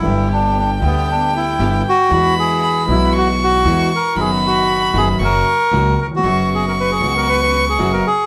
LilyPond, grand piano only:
\new Staff \with { instrumentName = "Grand piano" } { \clef bass \time 4/4 \key fis \mixolydian \tempo 4 = 116 <g,, g, d g b g'>4. <d, d g b g'>4. <g,, g, d g b g'>8 r8 | <e, e gis b fis'>4. <b,, b, e gis b fis'>4. <e, e gis b fis'>8 r8 | <fis, dis fis b fis'>4. <fis, dis fis b fis'>8 <fis, cis fis ais fis'>8 r8 <cis, cis fis ais fis'>8 r32 dis,32 e,32 eis,32 | <fis, cis fis b fis'>4. <cis, cis fis b fis'>4. <fis, cis fis b fis'>8 r8 | }